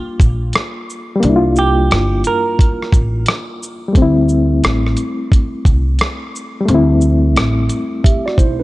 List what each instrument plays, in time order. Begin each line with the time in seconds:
Already playing: reed electric piano G3 A#3 D4 F4, clean electric guitar F4
0.20 upright bass A#1, kick, closed hi-hat, shaker
0.53 cross-stick, closed hi-hat
0.90 shaker
1.16 reed electric piano G3
1.20 upright bass C2, reed electric piano A#3, closed hi-hat
1.25 reed electric piano D4
1.29 reed electric piano E4
1.36 reed electric piano F4
1.56 clean electric guitar G4, shaker
1.91 upright bass G1, cross-stick, closed hi-hat
2.24 clean electric guitar A#4, closed hi-hat, shaker
2.59 kick, closed hi-hat
2.82 cross-stick
2.92 upright bass A1, kick, closed hi-hat, shaker
3.26 cross-stick, closed hi-hat
3.63 shaker
3.88 reed electric piano G3
3.93 upright bass D2, reed electric piano A3, kick, closed hi-hat
3.97 reed electric piano C4
4.02 reed electric piano E4
4.29 shaker
4.64 upright bass A1, cross-stick, closed hi-hat
4.87 cross-stick
4.97 closed hi-hat, shaker
5.32 kick, closed hi-hat
5.65 upright bass C2, kick, closed hi-hat, shaker
5.99 cross-stick, closed hi-hat
6.35 shaker
6.61 reed electric piano G3
6.65 upright bass D2, reed electric piano A3, closed hi-hat
6.70 reed electric piano C4
6.75 reed electric piano E4
7.01 shaker
7.36 upright bass A1, cross-stick, closed hi-hat
7.69 closed hi-hat, shaker
8.04 tine electric piano G4 E5, kick, closed hi-hat
8.26 tine electric piano F#4 D5, cross-stick
8.38 upright bass B1, tine electric piano E4 C5, kick, closed hi-hat, shaker
8.60 tine electric piano D4 B4